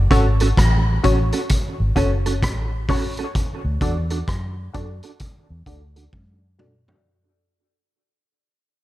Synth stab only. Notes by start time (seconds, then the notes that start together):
0.11 F#4 A4 C#5
1.03 F#4 A4 C#5
1.96 F#4 A4 C#5
2.89 F#4 A4 C#5
3.81 F#4 A4 D5
4.73 F#4 A4 D5
5.66 F#4 A4 D5
6.59 F#4 A4 D5